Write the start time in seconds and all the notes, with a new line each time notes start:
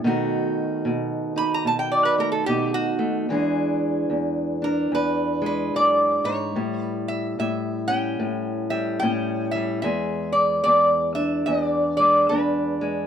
0.04 B2 D#3 A3 D#4 F#4
0.85 B2
1.36 D#4 B5
1.54 A#5
1.65 B2 A5
1.79 G5
1.92 D5
2.05 B4
2.18 A3 A#4
2.32 A4
2.46 B2 D#4 G4
2.74 F#4
2.99 A3
3.29 E2 E3 G#3 D4 G#4
4.10 E2
4.62 D4 A#4
4.92 E2 B4
5.42 G#3
5.46 B4
5.74 F#2 D5
6.24 G#2 C#5
6.56 A2 G3
6.81 B4
7.08 E5
7.39 A2 E5
7.88 C#4 G5
8.20 A2
8.70 G3 E5
9.00 A2 C#4 G5
9.51 G3 E5
9.82 E2 G#3 E5
10.32 D5
10.64 E2 D5
11.15 D4 E5
11.46 E2 D#5
11.66 D5
11.97 G#3 D5
12.29 E2 D4 B4
12.81 G#3